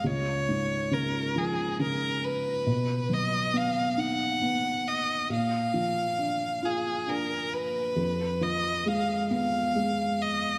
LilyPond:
<<
  \new Staff \with { instrumentName = "Violin" } { \time 6/8 \key bes \phrygian \tempo 4. = 45 des''4 bes'8 aes'8 bes'8 ces''8~ | ces''8 dis''8 f''8 fis''4 dis''8 | f''4. aes'8 bes'8 ces''8~ | ces''8 ees''8 f''8 f''4 ees''8 | }
  \new Staff \with { instrumentName = "Felt piano" } { \clef bass \time 6/8 \key bes \phrygian des,8 aes,8 des8 f8 des4 | b,8 fis8 b8 dis'8 b4 | bes,8 f8 d'8 f'8 d'4 | f,8 f8 aes8 ces'8 aes4 | }
>>